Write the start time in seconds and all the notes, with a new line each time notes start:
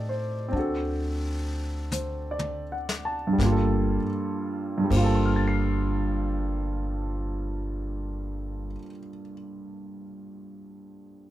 Already playing: A2 C4 D#4 G4 A4 D5 D#5
0.09 C5
0.48 C4 D4
0.53 D2 F#4, brush sweep
0.59 A4
1.92 C5, hi-hat pedal, mid tom
2.31 D5
2.39 mid tom
2.72 F#5
2.89 snare
3.05 A5
3.27 G2
3.33 G3
3.38 G1 A#3, kick, snare
3.45 F4
3.52 A4
4.78 G2
4.84 G3
4.90 G1 A#3 C5, kick, crash
4.96 F4 F5
5.03 A4 A5
5.15 C6
5.26 F6
5.36 A6
5.48 C7